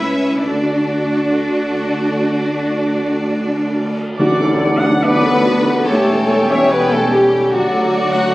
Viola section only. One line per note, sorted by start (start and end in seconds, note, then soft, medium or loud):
0.00 0.45 E4 medium
0.45 3.98 F#4 soft
4.18 4.39 F#4 medium
4.18 4.61 D5 medium
4.41 4.62 A4 medium
4.62 4.83 D5 medium
4.83 5.04 F#5 medium
5.04 5.25 D5 medium
5.24 5.46 A4 medium
5.45 5.66 F#4 medium
5.66 5.87 A4 medium
5.87 6.07 G4 medium
5.87 6.27 C#5 medium
6.07 6.29 A4 medium
6.29 6.50 C#5 medium
6.50 6.71 E5 medium
6.71 6.92 C#5 medium
6.91 7.12 A4 medium
7.12 7.32 G4 medium
7.32 7.52 A4 medium
7.51 7.70 F#4 medium
7.51 7.91 D5 medium
7.72 7.92 A4 medium
7.92 8.13 D5 medium
8.12 8.33 F#5 medium